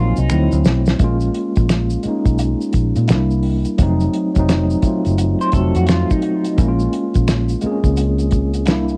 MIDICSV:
0, 0, Header, 1, 6, 480
1, 0, Start_track
1, 0, Tempo, 697674
1, 685, Time_signature, 4, 2, 24, 8
1, 6173, End_track
2, 0, Start_track
2, 0, Title_t, "Clean electric guitar"
2, 0, Program_c, 0, 27
2, 0, Note_on_c, 0, 65, 78
2, 127, Note_off_c, 0, 65, 0
2, 127, Note_on_c, 0, 63, 70
2, 350, Note_off_c, 0, 63, 0
2, 3722, Note_on_c, 0, 72, 67
2, 3804, Note_off_c, 0, 72, 0
2, 3811, Note_on_c, 0, 69, 71
2, 3952, Note_off_c, 0, 69, 0
2, 3964, Note_on_c, 0, 66, 73
2, 4045, Note_off_c, 0, 66, 0
2, 4054, Note_on_c, 0, 65, 76
2, 4194, Note_off_c, 0, 65, 0
2, 4205, Note_on_c, 0, 63, 68
2, 4513, Note_off_c, 0, 63, 0
2, 6173, End_track
3, 0, Start_track
3, 0, Title_t, "Tine electric piano"
3, 0, Program_c, 1, 4
3, 0, Control_c, 1, 64, 127
3, 0, Note_on_c, 1, 54, 89
3, 0, Note_on_c, 1, 58, 82
3, 0, Note_on_c, 1, 60, 89
3, 0, Note_on_c, 1, 63, 127
3, 0, Note_on_c, 1, 66, 107
3, 201, Note_on_c, 1, 53, 74
3, 210, Note_on_c, 1, 57, 85
3, 214, Control_c, 1, 64, 0
3, 215, Note_off_c, 1, 60, 0
3, 217, Note_off_c, 1, 58, 0
3, 218, Note_off_c, 1, 54, 0
3, 219, Note_off_c, 1, 63, 0
3, 221, Note_off_c, 1, 66, 0
3, 221, Note_on_c, 1, 60, 90
3, 235, Note_on_c, 1, 64, 100
3, 244, Note_on_c, 1, 54, 82
3, 260, Note_off_c, 1, 53, 0
3, 344, Control_c, 1, 64, 127
3, 617, Note_off_c, 1, 57, 0
3, 623, Note_off_c, 1, 60, 0
3, 629, Note_off_c, 1, 64, 0
3, 634, Note_off_c, 1, 54, 0
3, 683, Note_on_c, 1, 56, 91
3, 693, Note_on_c, 1, 58, 90
3, 695, Control_c, 1, 64, 0
3, 704, Note_on_c, 1, 61, 84
3, 717, Note_on_c, 1, 65, 107
3, 823, Control_c, 1, 64, 127
3, 1266, Note_off_c, 1, 56, 0
3, 1270, Note_off_c, 1, 58, 0
3, 1276, Note_off_c, 1, 61, 0
3, 1282, Note_off_c, 1, 65, 0
3, 1398, Note_on_c, 1, 56, 80
3, 1411, Note_on_c, 1, 58, 71
3, 1422, Note_on_c, 1, 61, 72
3, 1434, Note_on_c, 1, 63, 87
3, 2122, Note_off_c, 1, 56, 0
3, 2123, Note_on_c, 1, 55, 80
3, 2124, Note_off_c, 1, 58, 0
3, 2133, Note_on_c, 1, 58, 75
3, 2134, Note_off_c, 1, 61, 0
3, 2135, Control_c, 1, 64, 0
3, 2139, Note_off_c, 1, 63, 0
3, 2145, Note_on_c, 1, 62, 70
3, 2155, Note_on_c, 1, 64, 89
3, 2249, Control_c, 1, 64, 127
3, 2533, Note_off_c, 1, 55, 0
3, 2538, Note_off_c, 1, 58, 0
3, 2544, Note_off_c, 1, 62, 0
3, 2550, Note_off_c, 1, 64, 0
3, 2601, Note_on_c, 1, 54, 100
3, 2612, Note_on_c, 1, 57, 85
3, 2615, Control_c, 1, 64, 0
3, 2624, Note_on_c, 1, 60, 93
3, 2635, Note_on_c, 1, 63, 107
3, 2749, Control_c, 1, 64, 127
3, 2894, Note_off_c, 1, 54, 0
3, 2899, Note_off_c, 1, 57, 0
3, 2905, Note_off_c, 1, 60, 0
3, 2911, Note_off_c, 1, 63, 0
3, 2989, Note_on_c, 1, 54, 85
3, 3001, Note_on_c, 1, 57, 72
3, 3013, Note_on_c, 1, 60, 78
3, 3023, Note_on_c, 1, 63, 93
3, 3263, Note_off_c, 1, 54, 0
3, 3268, Note_off_c, 1, 57, 0
3, 3275, Note_off_c, 1, 60, 0
3, 3280, Note_off_c, 1, 63, 0
3, 3319, Note_on_c, 1, 54, 75
3, 3330, Note_on_c, 1, 57, 74
3, 3340, Note_on_c, 1, 60, 62
3, 3353, Note_on_c, 1, 65, 83
3, 3724, Note_off_c, 1, 54, 0
3, 3729, Note_off_c, 1, 57, 0
3, 3734, Note_off_c, 1, 60, 0
3, 3741, Note_off_c, 1, 65, 0
3, 3800, Note_on_c, 1, 54, 76
3, 3810, Note_on_c, 1, 57, 75
3, 3822, Note_on_c, 1, 60, 75
3, 3833, Note_on_c, 1, 66, 78
3, 4384, Note_off_c, 1, 54, 0
3, 4389, Note_off_c, 1, 57, 0
3, 4395, Note_off_c, 1, 60, 0
3, 4401, Note_off_c, 1, 66, 0
3, 4517, Note_on_c, 1, 56, 90
3, 4529, Note_on_c, 1, 58, 97
3, 4535, Control_c, 1, 64, 0
3, 4542, Note_on_c, 1, 61, 101
3, 4552, Note_on_c, 1, 64, 90
3, 4595, Note_off_c, 1, 64, 0
3, 4597, Note_on_c, 1, 65, 107
3, 4633, Control_c, 1, 64, 127
3, 5103, Note_off_c, 1, 56, 0
3, 5109, Note_off_c, 1, 58, 0
3, 5115, Note_off_c, 1, 61, 0
3, 5143, Note_off_c, 1, 65, 0
3, 5239, Note_on_c, 1, 56, 88
3, 5249, Note_on_c, 1, 58, 73
3, 5261, Note_on_c, 1, 60, 61
3, 5274, Note_on_c, 1, 68, 88
3, 5306, Note_on_c, 1, 61, 81
3, 5310, Note_off_c, 1, 60, 0
3, 5958, Note_on_c, 1, 55, 78
3, 5960, Note_off_c, 1, 58, 0
3, 5962, Note_off_c, 1, 56, 0
3, 5968, Note_on_c, 1, 58, 79
3, 5975, Control_c, 1, 64, 0
3, 5979, Note_off_c, 1, 68, 0
3, 5980, Note_on_c, 1, 62, 75
3, 5991, Note_on_c, 1, 64, 104
3, 5996, Note_off_c, 1, 61, 0
3, 6106, Control_c, 1, 64, 127
3, 6173, Note_off_c, 1, 55, 0
3, 6173, Note_off_c, 1, 58, 0
3, 6173, Note_off_c, 1, 62, 0
3, 6173, Note_off_c, 1, 64, 0
3, 6173, End_track
4, 0, Start_track
4, 0, Title_t, "Fingered electric bass"
4, 0, Program_c, 2, 33
4, 0, Note_on_c, 2, 34, 91
4, 89, Note_off_c, 2, 34, 0
4, 124, Note_on_c, 2, 36, 88
4, 191, Note_off_c, 2, 36, 0
4, 211, Note_on_c, 2, 38, 100
4, 329, Note_off_c, 2, 38, 0
4, 361, Note_on_c, 2, 38, 90
4, 430, Note_off_c, 2, 38, 0
4, 449, Note_on_c, 2, 35, 91
4, 638, Note_off_c, 2, 35, 0
4, 690, Note_on_c, 2, 34, 95
4, 879, Note_off_c, 2, 34, 0
4, 1085, Note_on_c, 2, 34, 92
4, 1342, Note_off_c, 2, 34, 0
4, 1553, Note_on_c, 2, 35, 77
4, 1745, Note_off_c, 2, 35, 0
4, 1890, Note_on_c, 2, 34, 72
4, 2008, Note_off_c, 2, 34, 0
4, 2041, Note_on_c, 2, 46, 83
4, 2129, Note_on_c, 2, 36, 82
4, 2139, Note_off_c, 2, 46, 0
4, 2508, Note_off_c, 2, 36, 0
4, 2611, Note_on_c, 2, 29, 108
4, 2799, Note_off_c, 2, 29, 0
4, 3006, Note_on_c, 2, 29, 83
4, 3263, Note_off_c, 2, 29, 0
4, 3485, Note_on_c, 2, 30, 79
4, 3672, Note_off_c, 2, 30, 0
4, 3810, Note_on_c, 2, 29, 72
4, 3929, Note_off_c, 2, 29, 0
4, 3962, Note_on_c, 2, 41, 83
4, 4151, Note_off_c, 2, 41, 0
4, 4532, Note_on_c, 2, 34, 110
4, 4720, Note_off_c, 2, 34, 0
4, 4926, Note_on_c, 2, 34, 90
4, 5183, Note_off_c, 2, 34, 0
4, 5396, Note_on_c, 2, 37, 85
4, 5973, Note_off_c, 2, 37, 0
4, 5973, Note_on_c, 2, 36, 95
4, 6173, Note_off_c, 2, 36, 0
4, 6173, End_track
5, 0, Start_track
5, 0, Title_t, "Muted fingered electric bass strokes"
5, 1412, Note_on_c, 9, 29, 43
5, 1480, Note_off_c, 9, 29, 0
5, 3326, Note_on_c, 9, 29, 38
5, 3395, Note_off_c, 9, 29, 0
5, 5252, Note_on_c, 9, 29, 45
5, 5321, Note_off_c, 9, 29, 0
5, 6173, End_track
6, 0, Start_track
6, 0, Title_t, "Drums"
6, 113, Note_on_c, 9, 82, 46
6, 182, Note_off_c, 9, 82, 0
6, 205, Note_on_c, 9, 26, 74
6, 205, Note_on_c, 9, 82, 73
6, 273, Note_off_c, 9, 26, 0
6, 273, Note_off_c, 9, 82, 0
6, 356, Note_on_c, 9, 82, 45
6, 425, Note_off_c, 9, 82, 0
6, 445, Note_on_c, 9, 82, 58
6, 452, Note_on_c, 9, 38, 101
6, 513, Note_off_c, 9, 82, 0
6, 521, Note_off_c, 9, 38, 0
6, 590, Note_on_c, 9, 82, 50
6, 604, Note_on_c, 9, 38, 96
6, 659, Note_off_c, 9, 82, 0
6, 673, Note_off_c, 9, 38, 0
6, 683, Note_on_c, 9, 42, 74
6, 685, Note_on_c, 9, 82, 52
6, 686, Note_on_c, 9, 36, 107
6, 752, Note_off_c, 9, 42, 0
6, 754, Note_off_c, 9, 82, 0
6, 755, Note_off_c, 9, 36, 0
6, 828, Note_on_c, 9, 82, 37
6, 837, Note_on_c, 9, 42, 28
6, 897, Note_off_c, 9, 82, 0
6, 906, Note_off_c, 9, 42, 0
6, 925, Note_on_c, 9, 42, 65
6, 994, Note_off_c, 9, 42, 0
6, 1071, Note_on_c, 9, 42, 42
6, 1074, Note_on_c, 9, 82, 39
6, 1081, Note_on_c, 9, 36, 86
6, 1140, Note_off_c, 9, 42, 0
6, 1143, Note_off_c, 9, 82, 0
6, 1150, Note_off_c, 9, 36, 0
6, 1165, Note_on_c, 9, 26, 66
6, 1165, Note_on_c, 9, 42, 78
6, 1165, Note_on_c, 9, 82, 73
6, 1171, Note_on_c, 9, 38, 91
6, 1234, Note_off_c, 9, 26, 0
6, 1234, Note_off_c, 9, 42, 0
6, 1234, Note_off_c, 9, 82, 0
6, 1239, Note_off_c, 9, 38, 0
6, 1307, Note_on_c, 9, 82, 51
6, 1376, Note_off_c, 9, 82, 0
6, 1397, Note_on_c, 9, 42, 54
6, 1397, Note_on_c, 9, 82, 37
6, 1466, Note_off_c, 9, 42, 0
6, 1466, Note_off_c, 9, 82, 0
6, 1551, Note_on_c, 9, 36, 67
6, 1551, Note_on_c, 9, 42, 41
6, 1553, Note_on_c, 9, 82, 46
6, 1620, Note_off_c, 9, 36, 0
6, 1620, Note_off_c, 9, 42, 0
6, 1622, Note_off_c, 9, 82, 0
6, 1640, Note_on_c, 9, 82, 60
6, 1643, Note_on_c, 9, 42, 81
6, 1708, Note_off_c, 9, 82, 0
6, 1712, Note_off_c, 9, 42, 0
6, 1796, Note_on_c, 9, 82, 46
6, 1865, Note_off_c, 9, 82, 0
6, 1876, Note_on_c, 9, 42, 63
6, 1886, Note_on_c, 9, 36, 69
6, 1886, Note_on_c, 9, 82, 46
6, 1945, Note_off_c, 9, 42, 0
6, 1954, Note_off_c, 9, 36, 0
6, 1955, Note_off_c, 9, 82, 0
6, 2035, Note_on_c, 9, 42, 45
6, 2035, Note_on_c, 9, 82, 42
6, 2104, Note_off_c, 9, 42, 0
6, 2104, Note_off_c, 9, 82, 0
6, 2117, Note_on_c, 9, 42, 71
6, 2126, Note_on_c, 9, 26, 67
6, 2126, Note_on_c, 9, 82, 66
6, 2137, Note_on_c, 9, 38, 96
6, 2186, Note_off_c, 9, 42, 0
6, 2195, Note_off_c, 9, 26, 0
6, 2195, Note_off_c, 9, 82, 0
6, 2206, Note_off_c, 9, 38, 0
6, 2275, Note_on_c, 9, 82, 43
6, 2344, Note_off_c, 9, 82, 0
6, 2358, Note_on_c, 9, 46, 45
6, 2427, Note_off_c, 9, 46, 0
6, 2511, Note_on_c, 9, 42, 43
6, 2511, Note_on_c, 9, 82, 46
6, 2580, Note_off_c, 9, 42, 0
6, 2580, Note_off_c, 9, 82, 0
6, 2603, Note_on_c, 9, 42, 81
6, 2605, Note_on_c, 9, 82, 51
6, 2607, Note_on_c, 9, 36, 110
6, 2672, Note_off_c, 9, 42, 0
6, 2674, Note_off_c, 9, 82, 0
6, 2676, Note_off_c, 9, 36, 0
6, 2754, Note_on_c, 9, 82, 33
6, 2759, Note_on_c, 9, 42, 32
6, 2823, Note_off_c, 9, 82, 0
6, 2828, Note_off_c, 9, 42, 0
6, 2846, Note_on_c, 9, 42, 59
6, 2915, Note_off_c, 9, 42, 0
6, 2994, Note_on_c, 9, 42, 42
6, 2998, Note_on_c, 9, 82, 42
6, 3002, Note_on_c, 9, 36, 81
6, 3063, Note_off_c, 9, 42, 0
6, 3067, Note_off_c, 9, 82, 0
6, 3071, Note_off_c, 9, 36, 0
6, 3089, Note_on_c, 9, 42, 85
6, 3091, Note_on_c, 9, 26, 63
6, 3091, Note_on_c, 9, 82, 75
6, 3094, Note_on_c, 9, 38, 98
6, 3157, Note_off_c, 9, 42, 0
6, 3160, Note_off_c, 9, 26, 0
6, 3160, Note_off_c, 9, 82, 0
6, 3163, Note_off_c, 9, 38, 0
6, 3235, Note_on_c, 9, 82, 45
6, 3304, Note_off_c, 9, 82, 0
6, 3319, Note_on_c, 9, 42, 59
6, 3322, Note_on_c, 9, 36, 78
6, 3324, Note_on_c, 9, 82, 39
6, 3387, Note_off_c, 9, 42, 0
6, 3391, Note_off_c, 9, 36, 0
6, 3393, Note_off_c, 9, 82, 0
6, 3473, Note_on_c, 9, 42, 39
6, 3482, Note_on_c, 9, 82, 46
6, 3542, Note_off_c, 9, 42, 0
6, 3551, Note_off_c, 9, 82, 0
6, 3565, Note_on_c, 9, 42, 81
6, 3565, Note_on_c, 9, 82, 63
6, 3634, Note_off_c, 9, 42, 0
6, 3634, Note_off_c, 9, 82, 0
6, 3722, Note_on_c, 9, 82, 49
6, 3791, Note_off_c, 9, 82, 0
6, 3798, Note_on_c, 9, 42, 61
6, 3807, Note_on_c, 9, 36, 75
6, 3814, Note_on_c, 9, 82, 39
6, 3867, Note_off_c, 9, 42, 0
6, 3876, Note_off_c, 9, 36, 0
6, 3883, Note_off_c, 9, 82, 0
6, 3955, Note_on_c, 9, 42, 50
6, 3963, Note_on_c, 9, 82, 40
6, 4023, Note_off_c, 9, 42, 0
6, 4032, Note_off_c, 9, 82, 0
6, 4036, Note_on_c, 9, 42, 69
6, 4051, Note_on_c, 9, 26, 63
6, 4051, Note_on_c, 9, 82, 72
6, 4056, Note_on_c, 9, 38, 93
6, 4105, Note_off_c, 9, 42, 0
6, 4120, Note_off_c, 9, 26, 0
6, 4120, Note_off_c, 9, 82, 0
6, 4125, Note_off_c, 9, 38, 0
6, 4200, Note_on_c, 9, 82, 42
6, 4203, Note_on_c, 9, 36, 75
6, 4269, Note_off_c, 9, 82, 0
6, 4272, Note_off_c, 9, 36, 0
6, 4280, Note_on_c, 9, 42, 60
6, 4349, Note_off_c, 9, 42, 0
6, 4434, Note_on_c, 9, 42, 51
6, 4436, Note_on_c, 9, 82, 43
6, 4502, Note_off_c, 9, 42, 0
6, 4505, Note_off_c, 9, 82, 0
6, 4525, Note_on_c, 9, 42, 77
6, 4528, Note_on_c, 9, 36, 115
6, 4529, Note_on_c, 9, 82, 51
6, 4594, Note_off_c, 9, 42, 0
6, 4597, Note_off_c, 9, 36, 0
6, 4597, Note_off_c, 9, 82, 0
6, 4674, Note_on_c, 9, 82, 38
6, 4743, Note_off_c, 9, 82, 0
6, 4767, Note_on_c, 9, 42, 63
6, 4835, Note_off_c, 9, 42, 0
6, 4914, Note_on_c, 9, 42, 41
6, 4918, Note_on_c, 9, 82, 42
6, 4922, Note_on_c, 9, 36, 78
6, 4982, Note_off_c, 9, 42, 0
6, 4987, Note_off_c, 9, 82, 0
6, 4991, Note_off_c, 9, 36, 0
6, 5007, Note_on_c, 9, 26, 75
6, 5007, Note_on_c, 9, 82, 77
6, 5009, Note_on_c, 9, 42, 80
6, 5014, Note_on_c, 9, 38, 103
6, 5076, Note_off_c, 9, 26, 0
6, 5076, Note_off_c, 9, 82, 0
6, 5077, Note_off_c, 9, 42, 0
6, 5083, Note_off_c, 9, 38, 0
6, 5150, Note_on_c, 9, 82, 50
6, 5158, Note_on_c, 9, 42, 30
6, 5219, Note_off_c, 9, 82, 0
6, 5226, Note_off_c, 9, 42, 0
6, 5237, Note_on_c, 9, 42, 55
6, 5238, Note_on_c, 9, 82, 41
6, 5306, Note_off_c, 9, 42, 0
6, 5307, Note_off_c, 9, 82, 0
6, 5392, Note_on_c, 9, 36, 80
6, 5393, Note_on_c, 9, 42, 39
6, 5394, Note_on_c, 9, 82, 46
6, 5461, Note_off_c, 9, 36, 0
6, 5462, Note_off_c, 9, 42, 0
6, 5463, Note_off_c, 9, 82, 0
6, 5481, Note_on_c, 9, 82, 64
6, 5484, Note_on_c, 9, 42, 82
6, 5550, Note_off_c, 9, 82, 0
6, 5553, Note_off_c, 9, 42, 0
6, 5630, Note_on_c, 9, 42, 27
6, 5635, Note_on_c, 9, 82, 46
6, 5699, Note_off_c, 9, 42, 0
6, 5704, Note_off_c, 9, 82, 0
6, 5716, Note_on_c, 9, 42, 61
6, 5726, Note_on_c, 9, 36, 77
6, 5728, Note_on_c, 9, 82, 41
6, 5784, Note_off_c, 9, 42, 0
6, 5795, Note_off_c, 9, 36, 0
6, 5796, Note_off_c, 9, 82, 0
6, 5873, Note_on_c, 9, 42, 50
6, 5875, Note_on_c, 9, 82, 42
6, 5942, Note_off_c, 9, 42, 0
6, 5944, Note_off_c, 9, 82, 0
6, 5955, Note_on_c, 9, 42, 77
6, 5964, Note_on_c, 9, 26, 64
6, 5964, Note_on_c, 9, 82, 63
6, 5975, Note_on_c, 9, 38, 97
6, 6024, Note_off_c, 9, 42, 0
6, 6033, Note_off_c, 9, 26, 0
6, 6033, Note_off_c, 9, 82, 0
6, 6044, Note_off_c, 9, 38, 0
6, 6113, Note_on_c, 9, 82, 42
6, 6122, Note_on_c, 9, 42, 35
6, 6173, Note_off_c, 9, 42, 0
6, 6173, Note_off_c, 9, 82, 0
6, 6173, End_track
0, 0, End_of_file